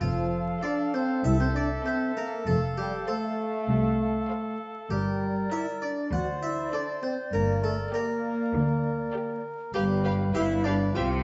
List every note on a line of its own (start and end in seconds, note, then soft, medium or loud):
0.00 0.49 F1 medium
0.00 0.50 F2 medium
0.00 0.59 F3 medium
0.00 0.59 F4 medium
0.00 4.93 A4 medium
0.00 1.26 F5 medium
0.62 0.93 D4 medium
0.62 1.09 A4 medium
0.62 1.08 C5 medium
0.62 0.91 D5 medium
0.62 1.09 F5 medium
0.94 1.25 C4 medium
0.94 1.23 C5 medium
1.24 1.72 C2 medium
1.24 1.73 C2 medium
1.24 1.40 E4 medium
1.24 1.39 E5 medium
1.24 2.48 E5 medium
1.39 1.46 C4 medium
1.39 1.54 C5 medium
1.55 1.68 D4 medium
1.55 1.84 D5 medium
1.84 2.14 C4 medium
1.84 2.31 A4 medium
1.84 2.31 C5 medium
1.84 2.14 C5 medium
1.84 2.31 E5 medium
2.16 2.46 A#3 medium
2.16 2.45 A#4 medium
2.46 2.95 F1 medium
2.46 2.95 F2 medium
2.46 2.60 A3 medium
2.46 2.75 A4 medium
2.46 4.90 F5 medium
2.78 2.92 G3 medium
2.78 3.06 G4 medium
3.08 4.57 A3 medium
3.08 4.56 A4 medium
3.08 3.53 A4 medium
3.08 3.54 C5 medium
3.08 3.53 F5 medium
3.69 4.17 C2 medium
4.30 4.75 A4 medium
4.30 4.75 C5 medium
4.30 4.75 F5 medium
4.90 5.39 G1 medium
4.90 5.39 G2 medium
4.90 5.47 G3 medium
4.90 5.48 G4 medium
4.90 5.96 A#4 medium
4.90 9.43 D5 medium
5.52 5.66 E4 medium
5.52 5.97 A#4 medium
5.52 5.98 A#4 medium
5.52 5.97 D5 medium
5.52 5.80 E5 medium
5.82 6.12 D4 medium
5.82 6.10 D5 medium
6.12 6.60 D2 medium
6.12 6.61 D2 medium
6.12 6.26 F#4 medium
6.12 7.04 C5 medium
6.12 6.41 F#5 medium
6.42 6.72 E4 medium
6.42 6.71 E5 medium
6.73 6.86 D4 medium
6.73 7.17 A4 medium
6.73 7.18 C5 medium
6.73 7.01 D5 medium
6.73 7.18 D5 medium
7.02 7.16 C4 medium
7.02 7.31 C5 medium
7.32 7.81 G1 medium
7.32 7.81 G2 medium
7.32 7.63 A#3 medium
7.32 9.70 A#4 medium
7.32 7.61 A#4 medium
7.63 7.77 A3 medium
7.63 7.92 A4 medium
7.93 9.41 A#3 medium
7.93 8.38 G4 medium
7.93 8.38 A#4 medium
7.93 9.40 A#4 medium
7.93 8.38 D5 medium
8.54 9.01 D2 medium
9.14 9.58 G4 medium
9.14 9.58 A#4 medium
9.14 9.59 D5 medium
9.73 10.27 G1 medium
9.73 10.27 G2 medium
9.73 10.31 G3 medium
9.73 10.30 G4 medium
9.73 9.82 G4 medium
9.73 9.81 B4 medium
9.73 10.98 B4 medium
9.73 10.97 F5 medium
9.73 9.83 F5 medium
10.04 10.12 G4 medium
10.04 10.13 B4 medium
10.04 10.12 F5 soft
10.34 10.88 G1 medium
10.34 10.88 G2 medium
10.34 10.65 E4 loud
10.34 10.42 G4 medium
10.34 10.42 B4 medium
10.34 10.63 E5 medium
10.34 10.43 F5 medium
10.64 10.95 D4 medium
10.64 10.73 G4 medium
10.64 10.74 B4 medium
10.64 10.93 D5 medium
10.64 10.73 F5 medium
10.95 11.23 C2 medium
10.95 11.23 C3 medium
10.95 11.09 F4 medium
10.95 11.04 G4 medium
10.95 11.04 C5 medium
10.95 11.23 C5 medium
10.95 11.04 E5 medium
10.95 11.23 F5 medium
10.95 11.23 G5 medium